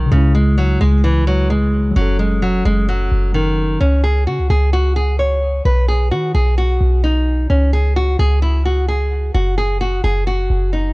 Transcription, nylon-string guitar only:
0, 0, Header, 1, 2, 480
1, 0, Start_track
1, 0, Key_signature, 4, "minor"
1, 0, Tempo, 461538
1, 119, Time_signature, 4, 2, 24, 8
1, 11367, End_track
2, 0, Start_track
2, 0, Title_t, "Nylon-string guitar"
2, 0, Program_c, 0, 24
2, 119, Note_on_c, 0, 49, 80
2, 331, Note_off_c, 0, 49, 0
2, 360, Note_on_c, 0, 56, 83
2, 572, Note_off_c, 0, 56, 0
2, 599, Note_on_c, 0, 54, 85
2, 811, Note_off_c, 0, 54, 0
2, 839, Note_on_c, 0, 56, 94
2, 1051, Note_off_c, 0, 56, 0
2, 1079, Note_on_c, 0, 52, 85
2, 1291, Note_off_c, 0, 52, 0
2, 1321, Note_on_c, 0, 54, 87
2, 1532, Note_off_c, 0, 54, 0
2, 1559, Note_on_c, 0, 56, 78
2, 2010, Note_off_c, 0, 56, 0
2, 2039, Note_on_c, 0, 54, 87
2, 2251, Note_off_c, 0, 54, 0
2, 2279, Note_on_c, 0, 56, 85
2, 2491, Note_off_c, 0, 56, 0
2, 2519, Note_on_c, 0, 54, 89
2, 2731, Note_off_c, 0, 54, 0
2, 2760, Note_on_c, 0, 56, 97
2, 2972, Note_off_c, 0, 56, 0
2, 3001, Note_on_c, 0, 54, 87
2, 3451, Note_off_c, 0, 54, 0
2, 3477, Note_on_c, 0, 51, 74
2, 3929, Note_off_c, 0, 51, 0
2, 3958, Note_on_c, 0, 61, 84
2, 4171, Note_off_c, 0, 61, 0
2, 4198, Note_on_c, 0, 68, 81
2, 4410, Note_off_c, 0, 68, 0
2, 4441, Note_on_c, 0, 66, 79
2, 4652, Note_off_c, 0, 66, 0
2, 4680, Note_on_c, 0, 68, 81
2, 4892, Note_off_c, 0, 68, 0
2, 4920, Note_on_c, 0, 66, 92
2, 5132, Note_off_c, 0, 66, 0
2, 5158, Note_on_c, 0, 68, 81
2, 5371, Note_off_c, 0, 68, 0
2, 5398, Note_on_c, 0, 73, 74
2, 5850, Note_off_c, 0, 73, 0
2, 5880, Note_on_c, 0, 71, 80
2, 6091, Note_off_c, 0, 71, 0
2, 6119, Note_on_c, 0, 68, 78
2, 6331, Note_off_c, 0, 68, 0
2, 6358, Note_on_c, 0, 66, 87
2, 6571, Note_off_c, 0, 66, 0
2, 6599, Note_on_c, 0, 68, 85
2, 6811, Note_off_c, 0, 68, 0
2, 6841, Note_on_c, 0, 66, 88
2, 7291, Note_off_c, 0, 66, 0
2, 7318, Note_on_c, 0, 63, 75
2, 7770, Note_off_c, 0, 63, 0
2, 7798, Note_on_c, 0, 61, 75
2, 8011, Note_off_c, 0, 61, 0
2, 8040, Note_on_c, 0, 68, 79
2, 8252, Note_off_c, 0, 68, 0
2, 8282, Note_on_c, 0, 66, 84
2, 8493, Note_off_c, 0, 66, 0
2, 8521, Note_on_c, 0, 68, 92
2, 8732, Note_off_c, 0, 68, 0
2, 8758, Note_on_c, 0, 64, 86
2, 8971, Note_off_c, 0, 64, 0
2, 9001, Note_on_c, 0, 66, 86
2, 9212, Note_off_c, 0, 66, 0
2, 9240, Note_on_c, 0, 68, 80
2, 9691, Note_off_c, 0, 68, 0
2, 9718, Note_on_c, 0, 66, 84
2, 9931, Note_off_c, 0, 66, 0
2, 9960, Note_on_c, 0, 68, 81
2, 10172, Note_off_c, 0, 68, 0
2, 10200, Note_on_c, 0, 66, 88
2, 10412, Note_off_c, 0, 66, 0
2, 10440, Note_on_c, 0, 68, 88
2, 10652, Note_off_c, 0, 68, 0
2, 10679, Note_on_c, 0, 66, 86
2, 11130, Note_off_c, 0, 66, 0
2, 11158, Note_on_c, 0, 63, 73
2, 11367, Note_off_c, 0, 63, 0
2, 11367, End_track
0, 0, End_of_file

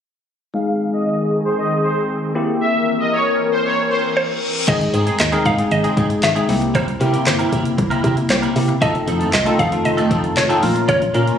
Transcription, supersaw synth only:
0, 0, Header, 1, 2, 480
1, 0, Start_track
1, 0, Tempo, 517241
1, 502, Time_signature, 4, 2, 24, 8
1, 10563, End_track
2, 0, Start_track
2, 0, Title_t, "Supersaw synth"
2, 0, Program_c, 0, 81
2, 502, Note_on_c, 0, 77, 95
2, 665, Note_off_c, 0, 77, 0
2, 862, Note_on_c, 0, 75, 79
2, 944, Note_off_c, 0, 75, 0
2, 980, Note_on_c, 0, 75, 87
2, 1063, Note_off_c, 0, 75, 0
2, 1343, Note_on_c, 0, 72, 68
2, 1424, Note_off_c, 0, 72, 0
2, 1463, Note_on_c, 0, 75, 80
2, 1626, Note_off_c, 0, 75, 0
2, 1703, Note_on_c, 0, 72, 82
2, 1784, Note_off_c, 0, 72, 0
2, 2421, Note_on_c, 0, 76, 95
2, 2585, Note_off_c, 0, 76, 0
2, 2783, Note_on_c, 0, 75, 74
2, 2864, Note_off_c, 0, 75, 0
2, 2903, Note_on_c, 0, 73, 88
2, 2985, Note_off_c, 0, 73, 0
2, 3262, Note_on_c, 0, 72, 69
2, 3344, Note_off_c, 0, 72, 0
2, 3380, Note_on_c, 0, 73, 80
2, 3544, Note_off_c, 0, 73, 0
2, 3620, Note_on_c, 0, 72, 78
2, 3702, Note_off_c, 0, 72, 0
2, 10563, End_track
0, 0, End_of_file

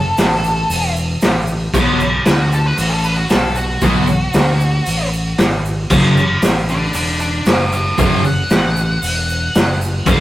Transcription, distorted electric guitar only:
0, 0, Header, 1, 2, 480
1, 0, Start_track
1, 0, Key_signature, 3, "minor"
1, 0, Tempo, 520833
1, 1608, Time_signature, 4, 2, 24, 8
1, 9402, End_track
2, 0, Start_track
2, 0, Title_t, "Distorted electric guitar"
2, 0, Program_c, 0, 30
2, 1607, Note_on_c, 0, 47, 80
2, 1617, Note_on_c, 0, 54, 96
2, 1619, Note_on_c, 0, 59, 112
2, 1800, Note_off_c, 0, 47, 0
2, 1805, Note_off_c, 0, 54, 0
2, 1806, Note_off_c, 0, 59, 0
2, 3526, Note_on_c, 0, 47, 101
2, 3532, Note_on_c, 0, 54, 93
2, 3538, Note_on_c, 0, 59, 107
2, 3720, Note_off_c, 0, 47, 0
2, 3723, Note_off_c, 0, 54, 0
2, 3726, Note_off_c, 0, 59, 0
2, 5450, Note_on_c, 0, 42, 90
2, 5459, Note_on_c, 0, 49, 94
2, 5465, Note_on_c, 0, 54, 101
2, 5642, Note_off_c, 0, 42, 0
2, 5647, Note_off_c, 0, 49, 0
2, 5650, Note_off_c, 0, 54, 0
2, 7357, Note_on_c, 0, 42, 90
2, 7369, Note_on_c, 0, 49, 103
2, 7370, Note_on_c, 0, 54, 97
2, 7554, Note_off_c, 0, 42, 0
2, 7560, Note_off_c, 0, 49, 0
2, 7561, Note_off_c, 0, 54, 0
2, 9271, Note_on_c, 0, 42, 93
2, 9282, Note_on_c, 0, 49, 97
2, 9289, Note_on_c, 0, 54, 94
2, 9402, Note_off_c, 0, 42, 0
2, 9402, Note_off_c, 0, 49, 0
2, 9402, Note_off_c, 0, 54, 0
2, 9402, End_track
0, 0, End_of_file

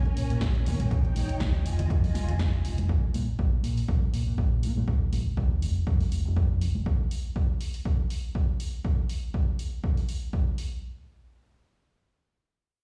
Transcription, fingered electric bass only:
0, 0, Header, 1, 3, 480
1, 0, Start_track
1, 0, Tempo, 495868
1, 881, Time_signature, 4, 2, 24, 8
1, 12421, End_track
2, 0, Start_track
2, 0, Title_t, "Fingered electric bass"
2, 0, Program_c, 0, 33
2, 161, Note_on_c, 0, 46, 83
2, 240, Note_off_c, 0, 46, 0
2, 288, Note_on_c, 0, 46, 96
2, 357, Note_off_c, 0, 46, 0
2, 401, Note_on_c, 0, 34, 89
2, 638, Note_on_c, 0, 46, 78
2, 653, Note_off_c, 0, 34, 0
2, 719, Note_off_c, 0, 46, 0
2, 769, Note_on_c, 0, 46, 89
2, 837, Note_off_c, 0, 46, 0
2, 881, Note_on_c, 0, 39, 98
2, 960, Note_off_c, 0, 39, 0
2, 1120, Note_on_c, 0, 34, 84
2, 1199, Note_off_c, 0, 34, 0
2, 1361, Note_on_c, 0, 39, 88
2, 1514, Note_off_c, 0, 39, 0
2, 1597, Note_on_c, 0, 29, 85
2, 1753, Note_off_c, 0, 29, 0
2, 1839, Note_on_c, 0, 41, 90
2, 1994, Note_off_c, 0, 41, 0
2, 2078, Note_on_c, 0, 29, 85
2, 2158, Note_off_c, 0, 29, 0
2, 2208, Note_on_c, 0, 29, 79
2, 2277, Note_off_c, 0, 29, 0
2, 2320, Note_on_c, 0, 41, 97
2, 2474, Note_off_c, 0, 41, 0
2, 2559, Note_on_c, 0, 29, 79
2, 2639, Note_off_c, 0, 29, 0
2, 2688, Note_on_c, 0, 29, 93
2, 2757, Note_off_c, 0, 29, 0
2, 2800, Note_on_c, 0, 34, 94
2, 2879, Note_off_c, 0, 34, 0
2, 3039, Note_on_c, 0, 46, 90
2, 3119, Note_off_c, 0, 46, 0
2, 3280, Note_on_c, 0, 34, 91
2, 3434, Note_off_c, 0, 34, 0
2, 3518, Note_on_c, 0, 46, 83
2, 3673, Note_off_c, 0, 46, 0
2, 3760, Note_on_c, 0, 34, 76
2, 3839, Note_off_c, 0, 34, 0
2, 3999, Note_on_c, 0, 46, 83
2, 4079, Note_off_c, 0, 46, 0
2, 4128, Note_on_c, 0, 46, 95
2, 4196, Note_off_c, 0, 46, 0
2, 4239, Note_on_c, 0, 34, 87
2, 4479, Note_on_c, 0, 46, 76
2, 4494, Note_off_c, 0, 34, 0
2, 4559, Note_off_c, 0, 46, 0
2, 4608, Note_on_c, 0, 46, 91
2, 4677, Note_off_c, 0, 46, 0
2, 4720, Note_on_c, 0, 39, 94
2, 4799, Note_off_c, 0, 39, 0
2, 4959, Note_on_c, 0, 34, 88
2, 5039, Note_off_c, 0, 34, 0
2, 5200, Note_on_c, 0, 39, 90
2, 5354, Note_off_c, 0, 39, 0
2, 5439, Note_on_c, 0, 29, 81
2, 5594, Note_off_c, 0, 29, 0
2, 5680, Note_on_c, 0, 41, 77
2, 5760, Note_off_c, 0, 41, 0
2, 5920, Note_on_c, 0, 29, 84
2, 5999, Note_off_c, 0, 29, 0
2, 6049, Note_on_c, 0, 29, 97
2, 6117, Note_off_c, 0, 29, 0
2, 6161, Note_on_c, 0, 41, 89
2, 6400, Note_on_c, 0, 29, 78
2, 6415, Note_off_c, 0, 41, 0
2, 6479, Note_off_c, 0, 29, 0
2, 6531, Note_on_c, 0, 29, 89
2, 6598, Note_off_c, 0, 29, 0
2, 12421, End_track
3, 0, Start_track
3, 0, Title_t, "Muted fingered electric bass strokes"
3, 1248, Note_on_c, 9, 29, 42
3, 1345, Note_off_c, 9, 29, 0
3, 5086, Note_on_c, 9, 29, 42
3, 5183, Note_off_c, 9, 29, 0
3, 12421, End_track
0, 0, End_of_file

